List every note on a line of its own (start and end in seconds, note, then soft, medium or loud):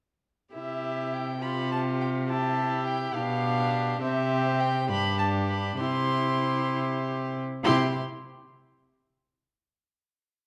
0.54 3.11 C3 soft
0.54 1.38 E4 soft
0.54 1.39 G4 soft
0.54 1.15 E5 medium
1.13 1.44 G5 medium
1.42 2.31 F4 medium
1.42 2.27 G4 soft
1.42 1.71 B5 medium
1.72 1.80 A5 medium
2.01 2.09 G5 medium
2.29 3.17 E4 medium
2.29 3.13 G4 medium
2.29 2.85 A5 medium
2.86 3.16 G5 medium
3.15 4.00 B2 medium
3.15 4.01 D4 medium
3.15 4.00 G4 medium
3.15 4.01 F5 medium
4.01 4.91 C3 medium
4.01 4.86 C4 medium
4.01 4.86 G4 medium
4.01 4.62 E5 medium
4.60 4.90 G5 medium
4.89 5.79 G2 medium
4.89 5.81 D4 medium
4.89 5.78 G4 medium
4.89 5.18 B5 loud
5.19 5.27 A5 medium
5.49 5.79 B5 medium
5.80 7.40 C3 medium
5.80 7.44 E4 medium
5.80 7.40 G4 medium
5.80 7.31 C6 medium
7.64 7.98 C3 medium
7.64 7.98 E4 medium
7.64 7.98 G4 medium
7.64 7.98 C6 medium